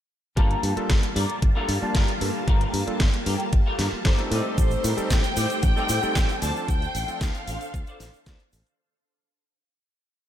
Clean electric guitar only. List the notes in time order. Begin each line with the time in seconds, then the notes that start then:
0.36 G4 A4 A#4 F5
1.03 muted clean electric guitar stroke
1.15 G4 A4 A#4 D5
1.55 G4 A4 A#4 F5
1.94 G4 A4 A#4 F5
2.21 muted clean electric guitar stroke
2.47 G4 A4 A#4 F5
3.14 muted clean electric guitar stroke
3.26 G4 A4 A#4 G5
3.66 G4 A4 A#4 F5
4.05 G4 A4 A#4 C5
4.32 G4 A4 C5 D#5
5.24 muted clean electric guitar stroke
5.37 G4 A4 C5 D#5
5.77 G4 A4 C5 D#5
6.15 G4 A4 C5 F5
6.42 F4 A4 C5 D5
7.35 muted clean electric guitar stroke
7.48 F4 A4 C5 F5
7.88 F4 A4 C5 D5
8.27 F4 A4 C5 D5
8.53 muted clean electric guitar stroke